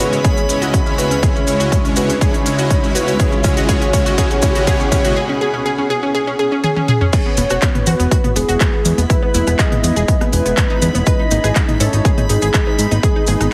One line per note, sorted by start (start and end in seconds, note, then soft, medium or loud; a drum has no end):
0.00 3.16 C#2 medium
0.00 0.18 C#3 medium
0.00 3.16 C#3 medium
0.00 0.18 G#3 medium
0.00 3.16 G#3 medium
0.00 0.18 C#4 medium
0.00 0.18 E4 medium
0.00 5.12 E4 medium
0.00 1.19 G#4 medium
0.00 0.23 B4 medium
0.00 0.18 C#5 medium
0.00 5.16 B5 medium
0.00 open hi-hat medium
0.00 riser medium
0.12 0.20 C#4 medium
0.12 closed hi-hat soft
0.12 maracas soft
0.24 0.36 C#3 medium
0.24 0.36 G#3 medium
0.24 0.36 C#4 medium
0.24 0.36 E4 medium
0.24 0.32 G#4 medium
0.24 0.36 C#5 medium
0.24 0.89 C#5 loud
0.24 kick loud
0.24 closed hi-hat medium
0.24 maracas soft
0.37 0.44 C#4 medium
0.37 closed hi-hat soft
0.37 maracas soft
0.49 0.59 C#3 medium
0.49 0.59 G#3 medium
0.49 0.57 C#4 medium
0.49 0.59 C#4 medium
0.49 0.59 E4 medium
0.49 0.59 C#5 medium
0.49 open hi-hat loud
0.49 maracas medium
0.62 0.80 C#3 medium
0.62 0.80 G#3 medium
0.62 0.80 C#4 medium
0.62 0.80 E4 medium
0.62 0.69 F#4 medium
0.62 0.80 D#5 medium
0.62 closed hi-hat soft
0.62 maracas soft
0.74 0.81 C#4 medium
0.74 kick loud
0.74 closed hi-hat medium
0.74 maracas medium
0.86 0.97 C#3 medium
0.86 0.97 G#3 medium
0.86 0.93 C#4 medium
0.86 0.97 C#4 medium
0.86 0.97 E4 medium
0.86 0.97 C#5 medium
0.86 maracas soft
0.98 1.17 C#3 medium
0.98 1.17 G#3 medium
0.98 1.17 C#4 medium
0.98 1.17 E4 medium
0.98 1.06 F#4 medium
0.98 1.21 B4 medium
0.98 1.17 C#5 medium
0.98 open hi-hat medium
0.98 maracas medium
1.11 1.18 C#4 medium
1.11 closed hi-hat medium
1.11 maracas soft
1.23 1.35 C#3 medium
1.23 1.35 G#3 medium
1.23 1.35 C#4 medium
1.23 1.35 E4 medium
1.23 5.12 F#4 medium
1.23 1.30 G#4 medium
1.23 1.87 C#5 loud
1.23 1.35 C#5 medium
1.23 kick loud
1.23 closed hi-hat medium
1.23 maracas medium
1.36 1.43 C#4 medium
1.36 maracas soft
1.47 1.57 C#3 medium
1.47 1.57 G#3 medium
1.47 1.55 C#4 medium
1.47 1.57 C#4 medium
1.47 1.57 E4 medium
1.47 1.57 C#5 medium
1.47 open hi-hat loud
1.47 maracas medium
1.60 1.78 C#3 medium
1.60 1.78 G#3 medium
1.60 1.78 C#4 medium
1.60 1.78 E4 medium
1.60 1.67 F#4 medium
1.60 1.78 D#5 medium
1.60 closed hi-hat medium
1.60 maracas soft
1.72 1.79 C#4 medium
1.72 kick loud
1.72 closed hi-hat medium
1.72 maracas soft
1.85 1.95 C#3 medium
1.85 1.95 G#3 medium
1.85 1.92 C#4 medium
1.85 1.95 C#4 medium
1.85 1.95 E4 medium
1.85 1.95 C#5 medium
1.85 closed hi-hat soft
1.85 maracas soft
1.96 2.15 C#3 medium
1.96 2.15 G#3 medium
1.96 2.15 C#4 medium
1.96 2.15 E4 medium
1.96 2.04 F#4 medium
1.96 2.19 B4 medium
1.96 2.15 C#5 loud
1.96 open hi-hat medium
1.96 maracas medium
2.09 2.16 C#4 medium
2.09 closed hi-hat medium
2.09 maracas soft
2.21 2.33 C#3 medium
2.21 2.33 G#3 medium
2.21 2.33 C#4 medium
2.21 2.33 E4 medium
2.21 2.29 G#4 loud
2.21 2.86 C#5 loud
2.21 2.33 C#5 medium
2.21 kick loud
2.21 closed hi-hat medium
2.21 maracas soft
2.34 2.41 C#4 medium
2.34 closed hi-hat soft
2.34 maracas soft
2.46 2.56 C#3 medium
2.46 2.56 G#3 medium
2.46 2.53 C#4 medium
2.46 2.56 C#4 medium
2.46 2.56 E4 medium
2.46 2.56 C#5 medium
2.46 open hi-hat loud
2.46 maracas medium
2.58 2.77 C#3 medium
2.58 2.77 G#3 medium
2.58 2.77 C#4 medium
2.58 2.77 E4 medium
2.58 2.66 F#4 medium
2.58 2.77 D#5 medium
2.58 closed hi-hat soft
2.58 maracas soft
2.70 2.78 C#4 medium
2.70 kick loud
2.70 closed hi-hat medium
2.70 maracas soft
2.83 2.93 C#3 medium
2.83 2.93 G#3 medium
2.83 2.90 C#4 medium
2.83 2.93 C#4 medium
2.83 2.93 E4 medium
2.83 2.93 C#5 medium
2.83 maracas soft
2.95 3.14 C#3 medium
2.95 3.14 G#3 medium
2.95 3.14 C#4 medium
2.95 3.14 E4 medium
2.95 3.03 F#4 medium
2.95 3.18 B4 medium
2.95 3.14 C#5 loud
2.95 open hi-hat medium
2.95 maracas medium
3.08 3.15 C#4 medium
3.08 closed hi-hat medium
3.08 maracas soft
3.19 5.14 B2 medium
3.19 3.32 C#3 medium
3.19 3.32 G#3 medium
3.19 5.14 B3 medium
3.19 3.32 C#4 medium
3.19 3.32 E4 medium
3.19 3.27 G#4 loud
3.19 3.67 C#5 medium
3.19 3.32 C#5 loud
3.19 5.14 F#5 medium
3.19 kick loud
3.19 closed hi-hat medium
3.19 maracas soft
3.32 3.39 C#4 medium
3.32 maracas soft
3.44 3.54 C#3 medium
3.44 3.54 G#3 medium
3.44 3.52 C#4 medium
3.44 3.54 C#4 medium
3.44 3.54 E4 medium
3.44 3.54 C#5 medium
3.44 kick loud
3.44 open hi-hat loud
3.44 maracas medium
3.57 3.67 C#3 medium
3.57 3.67 G#3 medium
3.57 3.67 C#4 medium
3.57 3.67 E4 medium
3.57 3.64 F#4 medium
3.57 3.67 D#5 loud
3.57 closed hi-hat medium
3.57 maracas soft
3.69 3.81 C#3 medium
3.69 3.81 G#3 medium
3.69 3.81 C#4 medium
3.69 3.81 E4 medium
3.69 3.76 G#4 loud
3.69 4.16 C#5 loud
3.69 3.81 C#5 medium
3.69 kick loud
3.69 closed hi-hat medium
3.69 maracas medium
3.81 3.88 C#4 medium
3.81 closed hi-hat soft
3.81 maracas soft
3.93 4.03 C#3 medium
3.93 4.03 G#3 medium
3.93 4.01 C#4 medium
3.93 4.03 C#4 medium
3.93 4.03 E4 medium
3.93 4.03 C#5 medium
3.93 kick loud
3.93 open hi-hat medium
3.93 maracas medium
4.06 4.16 C#3 medium
4.06 4.16 G#3 medium
4.06 4.16 C#4 medium
4.06 4.16 E4 medium
4.06 4.13 F#4 loud
4.06 4.16 D#5 loud
4.06 closed hi-hat medium
4.06 maracas soft
4.18 4.30 C#3 medium
4.18 4.30 G#3 medium
4.18 4.30 C#4 medium
4.18 4.30 E4 medium
4.18 4.25 G#4 loud
4.18 4.30 C#5 medium
4.18 4.65 C#5 loud
4.18 kick loud
4.18 closed hi-hat medium
4.18 maracas soft
4.31 4.38 C#4 medium
4.31 closed hi-hat soft
4.31 maracas soft
4.42 4.52 C#3 medium
4.42 4.52 G#3 medium
4.42 4.50 C#4 medium
4.42 4.52 C#4 medium
4.42 4.52 E4 medium
4.42 4.52 C#5 medium
4.42 kick loud
4.42 open hi-hat loud
4.42 maracas medium
4.55 4.65 C#3 medium
4.55 4.65 G#3 medium
4.55 4.65 C#4 medium
4.55 4.65 E4 medium
4.55 4.62 F#4 medium
4.55 4.65 D#5 medium
4.55 closed hi-hat medium
4.55 maracas soft
4.67 4.79 C#3 medium
4.67 4.79 G#3 medium
4.67 4.79 C#4 medium
4.67 4.79 E4 medium
4.67 4.75 G#4 loud
4.67 5.14 C#5 loud
4.67 4.79 C#5 loud
4.67 kick loud
4.67 closed hi-hat medium
4.67 maracas medium
4.80 4.87 C#4 medium
4.80 maracas soft
4.92 5.01 C#3 medium
4.92 5.01 G#3 medium
4.92 5.01 C#4 medium
4.92 4.99 C#4 medium
4.92 5.01 E4 medium
4.92 5.01 C#5 medium
4.92 kick loud
4.92 open hi-hat medium
4.92 maracas medium
5.04 5.14 C#3 medium
5.04 5.15 G#3 medium
5.04 5.15 C#4 medium
5.04 5.15 E4 medium
5.04 5.12 F#4 medium
5.04 5.15 D#5 loud
5.04 closed hi-hat medium
5.04 maracas soft
5.16 5.24 G#4 loud
5.29 5.36 C#4 medium
5.41 5.49 G#4 loud
5.54 5.61 C#4 medium
5.66 5.73 G#4 loud
5.78 5.85 C#4 medium
5.90 5.98 G#4 loud
6.03 6.10 C#4 medium
6.15 6.22 G#4 loud
6.27 6.34 C#4 medium
6.39 6.47 G#4 loud
6.52 6.59 C#4 medium
6.64 6.71 G#4 loud
6.64 high tom medium
6.76 6.83 C#4 medium
6.76 high tom medium
6.88 6.96 G#4 loud
6.88 mid tom medium
7.01 7.08 C#4 medium
7.01 mid tom medium
7.13 11.03 G#3 medium
7.13 9.08 B3 medium
7.13 11.03 E4 medium
7.13 7.21 G#4 loud
7.13 7.88 C#5 loud
7.13 13.53 B5 medium
7.13 kick loud
7.13 closed hi-hat medium
7.13 crash loud
7.13 high bongo soft
7.13 maracas soft
7.26 7.33 B3 medium
7.37 7.46 E1 loud
7.37 7.45 B3 medium
7.37 open hi-hat loud
7.37 high conga loud
7.37 maracas medium
7.50 7.58 E1 medium
7.50 7.57 F#4 loud
7.50 cross-stick medium
7.50 closed hi-hat medium
7.50 high bongo medium
7.50 maracas soft
7.62 7.70 B3 medium
7.62 kick loud
7.62 clap loud
7.62 closed hi-hat medium
7.62 maracas soft
7.75 7.82 B3 medium
7.75 closed hi-hat soft
7.75 mid tom medium
7.75 high bongo soft
7.75 high conga medium
7.87 7.95 E2 medium
7.87 7.94 F#4 medium
7.87 8.31 B4 medium
7.87 open hi-hat loud
7.87 maracas loud
8.00 8.07 E1 medium
8.00 8.07 B3 medium
8.00 closed hi-hat medium
8.00 high bongo soft
8.00 maracas medium
8.11 8.19 F#4 loud
8.11 kick loud
8.11 closed hi-hat medium
8.11 maracas soft
8.24 8.31 B3 medium
8.24 closed hi-hat soft
8.24 mid tom medium
8.24 high conga loud
8.36 8.44 E1 medium
8.36 8.43 B3 medium
8.36 9.00 G#4 loud
8.36 open hi-hat loud
8.36 high bongo medium
8.36 maracas medium
8.49 8.56 E1 medium
8.49 8.56 F#4 medium
8.49 closed hi-hat medium
8.49 maracas soft
8.60 8.68 B3 medium
8.60 kick loud
8.60 clap loud
8.60 closed hi-hat medium
8.60 high bongo soft
8.60 high conga medium
8.60 maracas soft
8.73 8.80 B3 medium
8.85 8.93 E2 medium
8.85 open hi-hat loud
8.85 high bongo soft
8.85 maracas loud
8.98 9.05 E1 medium
8.98 9.05 B3 medium
8.98 closed hi-hat medium
8.98 high conga loud
8.98 maracas medium
9.10 11.05 C#4 medium
9.10 9.17 E4 medium
9.10 9.54 B4 medium
9.10 kick loud
9.10 closed hi-hat medium
9.10 maracas soft
9.23 9.30 B3 medium
9.23 high bongo medium
9.34 9.42 E1 loud
9.34 9.42 E4 medium
9.34 open hi-hat loud
9.34 high conga medium
9.34 maracas medium
9.47 9.55 E1 medium
9.47 9.54 B3 medium
9.47 cross-stick medium
9.47 closed hi-hat medium
9.47 high bongo soft
9.47 maracas medium
9.59 9.67 G#4 loud
9.59 10.23 D#5 loud
9.59 kick loud
9.59 clap loud
9.59 closed hi-hat medium
9.59 maracas soft
9.72 9.79 B3 medium
9.72 closed hi-hat soft
9.72 mid tom medium
9.72 high bongo soft
9.72 high conga medium
9.84 9.92 E2 medium
9.84 9.91 B3 medium
9.84 open hi-hat loud
9.84 maracas medium
9.96 10.04 E1 medium
9.96 10.03 G#4 loud
9.96 closed hi-hat medium
9.96 maracas soft
10.08 10.16 B3 medium
10.08 kick loud
10.08 closed hi-hat medium
10.08 high bongo medium
10.08 maracas soft
10.21 10.28 B3 medium
10.21 cross-stick medium
10.21 closed hi-hat soft
10.21 high conga medium
10.33 10.41 E1 medium
10.33 10.97 B4 loud
10.33 open hi-hat loud
10.33 high bongo soft
10.33 maracas medium
10.46 10.53 E1 medium
10.46 10.53 B3 medium
10.46 closed hi-hat medium
10.46 maracas medium
10.57 10.65 B3 medium
10.57 kick loud
10.57 clap loud
10.57 closed hi-hat medium
10.57 high bongo soft
10.57 high conga medium
10.57 maracas soft
10.70 10.77 D#4 medium
10.82 10.90 E2 loud
10.82 10.89 B3 medium
10.82 open hi-hat loud
10.82 maracas medium
10.95 11.02 E1 medium
10.95 11.02 B3 medium
10.95 closed hi-hat medium
10.95 high bongo medium
10.95 high conga loud
10.95 maracas medium
11.06 13.53 G#3 medium
11.06 13.53 B3 medium
11.06 13.53 D#4 medium
11.06 11.14 B4 loud
11.06 11.71 D#5 loud
11.06 kick loud
11.06 closed hi-hat medium
11.06 maracas soft
11.19 11.26 D#4 medium
11.19 high bongo soft
11.31 11.39 G#1 medium
11.31 11.39 D#4 medium
11.31 open hi-hat loud
11.31 high conga medium
11.31 maracas medium
11.44 11.51 G#1 medium
11.44 11.51 G#4 medium
11.44 cross-stick medium
11.44 closed hi-hat medium
11.44 high bongo soft
11.44 maracas medium
11.56 11.63 D#4 medium
11.56 kick loud
11.56 clap loud
11.56 closed hi-hat medium
11.56 maracas soft
11.69 11.75 D#4 medium
11.69 closed hi-hat soft
11.69 mid tom medium
11.69 high conga medium
11.80 11.88 G#2 medium
11.80 11.88 A4 medium
11.80 12.25 C#5 medium
11.80 open hi-hat loud
11.80 high bongo medium
11.80 maracas loud
11.93 12.01 G#1 medium
11.93 12.00 D#4 medium
11.93 closed hi-hat soft
11.93 maracas medium
12.05 12.12 G#4 medium
12.05 kick loud
12.05 closed hi-hat medium
12.05 high bongo soft
12.05 maracas soft
12.18 12.25 D#4 medium
12.18 closed hi-hat soft
12.18 mid tom medium
12.18 high conga medium
12.29 12.38 G#1 medium
12.29 12.37 D#4 medium
12.29 12.94 G#4 medium
12.29 open hi-hat loud
12.29 high bongo soft
12.29 maracas loud
12.42 12.50 G#1 medium
12.42 12.49 G#4 medium
12.42 closed hi-hat medium
12.42 maracas medium
12.54 12.61 D#4 medium
12.54 kick loud
12.54 clap loud
12.54 closed hi-hat medium
12.54 high conga medium
12.54 maracas soft
12.67 12.74 D#4 medium
12.67 high bongo medium
12.79 12.87 G#2 medium
12.79 open hi-hat loud
12.79 maracas medium
12.91 12.99 G#1 medium
12.91 12.98 D#4 medium
12.91 closed hi-hat medium
12.91 high bongo soft
12.91 high conga medium
12.91 maracas medium
13.03 13.48 G#4 medium
13.03 13.11 G#4 medium
13.03 kick loud
13.03 closed hi-hat medium
13.03 maracas soft
13.16 13.23 D#4 medium
13.16 high bongo soft
13.27 13.36 G#1 loud
13.27 13.35 G#4 medium
13.27 open hi-hat loud
13.27 high conga medium
13.27 maracas medium
13.41 13.48 G#1 medium
13.41 13.48 D#4 medium
13.41 cross-stick medium
13.41 closed hi-hat medium
13.41 maracas medium